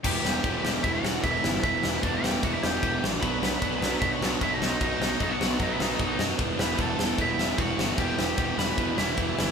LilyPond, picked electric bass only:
\new Staff \with { instrumentName = "Picked electric bass" } { \clef bass \time 4/4 \key e \minor \tempo 4 = 151 e,,8 e,,8 e,,8 e,,8 e,,8 e,,8 e,,8 g,,8 | e,,8 e,,8 e,,8 e,,8 e,,8 e,,8 e,,8 ais,,8 | b,,8 b,,8 b,,8 b,,8 b,,8 b,,8 b,,8 b,,8 | b,,8 b,,8 b,,8 b,,8 b,,8 b,,8 b,,8 fis,8 |
e,,8 e,,8 e,,8 e,,8 e,,8 e,,8 e,,8 g,,8 | e,,8 e,,8 e,,8 e,,8 e,,8 e,,8 e,,8 g,,8 | }